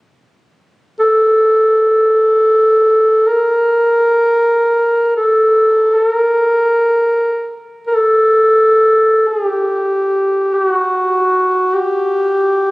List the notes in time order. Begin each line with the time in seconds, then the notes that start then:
0.99 A4
3.28 A#4
5.16 A4
5.95 A4
6.08 A#4
7.87 A#4
7.96 A4
9.28 G#4
9.46 G4
10.54 G4
10.66 F#4
11.75 G4